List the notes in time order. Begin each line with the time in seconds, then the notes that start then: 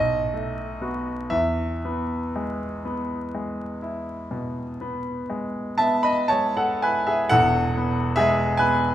Already playing: B1 D#5
0.34 A3
0.81 B3 F#4
1.30 E2 E5
1.85 B3
2.36 G#3
2.85 B3
3.35 G#3
3.82 E4
4.31 B2
4.81 B3
5.30 G#3
5.78 B3 E5 A5
6.03 D#5 B5
6.28 G#3 C#5 A5
6.57 A4 F#5
6.82 E4 B4 G#5
7.07 G#4 E5
7.29 E1 E2 A4 F#5
7.77 B3
8.16 G#3 G#4 E5
8.57 B3 B4 G#5